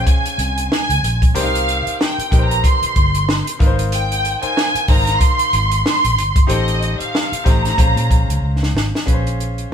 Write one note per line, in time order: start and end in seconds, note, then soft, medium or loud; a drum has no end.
0.00 1.37 C#4 medium
0.00 1.37 F4 medium
0.00 1.38 G#4 medium
0.00 1.35 C5 loud
0.07 0.70 G#5 medium
0.07 kick loud
0.07 closed hi-hat medium
0.26 closed hi-hat medium
0.38 0.67 C2 loud
0.38 closed hi-hat medium
0.58 closed hi-hat medium
0.72 1.19 G#5 loud
0.72 snare loud
0.89 1.02 C#2 medium
0.89 closed hi-hat medium
1.03 1.32 A#1 medium
1.03 closed hi-hat medium
1.22 kick loud
1.22 closed hi-hat medium
1.34 1.81 C2 loud
1.34 1.42 D4 medium
1.34 2.18 G4 medium
1.34 2.18 A#4 medium
1.34 2.18 C5 loud
1.34 1.96 F5 loud
1.34 closed hi-hat loud
1.41 2.21 D#4 medium
1.55 closed hi-hat medium
1.69 closed hi-hat medium
1.87 muted fingered electric bass stroke soft
1.87 closed hi-hat soft
2.01 2.43 G5 loud
2.01 snare loud
2.18 muted fingered electric bass stroke soft
2.18 closed hi-hat medium
2.31 2.61 A#1 medium
2.31 3.39 D#4 medium
2.31 3.39 G4 medium
2.31 3.39 A#4 medium
2.31 2.40 B4 medium
2.31 kick loud
2.31 closed hi-hat medium
2.38 3.42 C5 medium
2.43 2.64 A#5 loud
2.51 closed hi-hat medium
2.64 3.61 C6 medium
2.64 kick medium
2.64 closed hi-hat medium
2.82 muted fingered electric bass stroke soft
2.82 closed hi-hat medium
2.96 3.42 G1 loud
2.96 kick medium
2.96 closed hi-hat medium
3.15 closed hi-hat medium
3.29 snare loud
3.47 closed hi-hat medium
3.59 4.35 G#1 medium
3.59 4.27 D#4 medium
3.59 4.27 F4 medium
3.59 4.27 A#4 medium
3.59 3.68 B4 medium
3.59 kick loud
3.59 closed hi-hat medium
3.66 4.31 C5 loud
3.79 closed hi-hat medium
3.92 4.40 G5 loud
3.92 closed hi-hat loud
4.12 closed hi-hat medium
4.25 closed hi-hat medium
4.42 4.81 D#4 medium
4.42 4.81 F4 medium
4.42 4.82 A#4 medium
4.42 4.82 C5 medium
4.42 4.90 G#5 loud
4.42 muted fingered electric bass stroke soft
4.42 closed hi-hat soft
4.57 snare loud
4.75 muted fingered electric bass stroke soft
4.75 closed hi-hat medium
4.88 5.17 G#1 medium
4.88 5.96 D#4 medium
4.88 5.96 F4 medium
4.88 5.96 A#4 medium
4.88 5.96 C5 medium
4.88 5.22 A#5 loud
4.88 kick loud
4.88 snare soft
4.88 open hi-hat medium
5.07 snare soft
5.07 closed hi-hat medium
5.20 5.84 C6 loud
5.20 kick loud
5.20 closed hi-hat loud
5.39 closed hi-hat medium
5.53 5.82 G#1 loud
5.53 closed hi-hat medium
5.72 closed hi-hat medium
5.85 6.33 C6 loud
5.85 snare loud
6.04 6.17 A#1 medium
6.04 closed hi-hat medium
6.17 6.46 G1 medium
6.17 closed hi-hat medium
6.36 kick loud
6.36 closed hi-hat medium
6.47 6.95 A1 loud
6.47 7.31 D#4 medium
6.47 7.32 G4 medium
6.47 7.32 A4 medium
6.47 7.32 C5 loud
6.47 6.97 D#5 loud
6.47 closed hi-hat loud
6.68 closed hi-hat medium
6.83 closed hi-hat medium
7.00 7.46 F5 medium
7.00 muted fingered electric bass stroke soft
7.00 closed hi-hat soft
7.15 snare loud
7.32 muted fingered electric bass stroke soft
7.32 closed hi-hat medium
7.44 7.75 A1 medium
7.44 7.78 A3 medium
7.44 7.77 D#4 medium
7.44 7.77 G4 medium
7.44 7.76 C5 medium
7.44 8.43 A#5 medium
7.44 kick loud
7.44 closed hi-hat medium
7.48 snare soft
7.65 snare soft
7.65 closed hi-hat medium
7.77 7.95 A#1 medium
7.77 8.85 C#4 medium
7.77 8.85 F4 medium
7.77 8.86 G#4 medium
7.77 8.85 C5 medium
7.77 kick loud
7.77 closed hi-hat medium
7.96 8.09 A#2 loud
7.96 closed hi-hat medium
8.11 8.27 A#1 medium
8.11 kick medium
8.11 closed hi-hat medium
8.28 8.41 C#2 medium
8.28 closed hi-hat medium
8.42 8.71 C#2 medium
8.63 snare medium
8.74 8.91 G#1 medium
8.74 snare medium
8.95 snare medium
9.05 9.65 A#1 medium
9.05 9.74 C#4 medium
9.05 9.74 F4 medium
9.05 9.74 G#4 medium
9.05 9.14 B4 medium
9.05 kick medium
9.05 closed hi-hat medium
9.13 9.74 C5 medium
9.27 closed hi-hat soft
9.40 closed hi-hat soft
9.58 closed hi-hat soft
9.70 muted fingered electric bass stroke soft